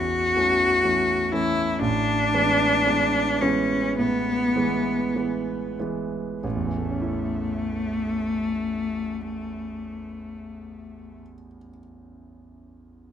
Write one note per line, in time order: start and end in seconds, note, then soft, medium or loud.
0.00 0.35 E2 soft
0.00 0.36 E3 soft
0.00 0.36 A3 soft
0.00 0.37 C#4 soft
0.00 1.33 F#4 loud
0.36 0.80 E3 soft
0.36 0.81 A3 soft
0.36 0.81 C#4 medium
0.83 1.28 E3 soft
0.83 1.29 A3 soft
0.83 1.29 C#4 soft
1.32 1.78 E3 soft
1.32 1.78 A3 medium
1.32 1.78 C#4 medium
1.32 1.81 E4 loud
1.81 2.31 A1 medium
1.81 2.32 A2 medium
1.81 3.43 D4 loud
2.33 2.83 E3 medium
2.33 2.83 G#3 soft
2.33 2.83 B3 medium
2.86 3.37 E3 soft
2.86 3.37 G#3 soft
2.86 3.37 B3 medium
3.41 3.94 E3 medium
3.41 3.94 G#3 medium
3.41 3.94 B3 medium
3.41 3.97 C#4 loud
3.98 4.54 A2 medium
3.98 5.76 B3 loud
4.55 5.12 E3 medium
4.55 5.12 G#3 medium
4.55 5.12 B3 medium
5.15 5.76 E3 soft
5.15 5.76 G#3 soft
5.15 5.76 B3 medium
5.79 6.40 E3 soft
5.79 6.40 G#3 soft
5.79 6.40 B3 soft
6.42 11.22 A1 medium
6.42 11.20 A3 medium
6.55 11.33 E2 soft
6.67 11.45 E3 soft
6.78 11.56 A3 soft
6.90 11.68 C#4 soft
7.01 11.79 E4 soft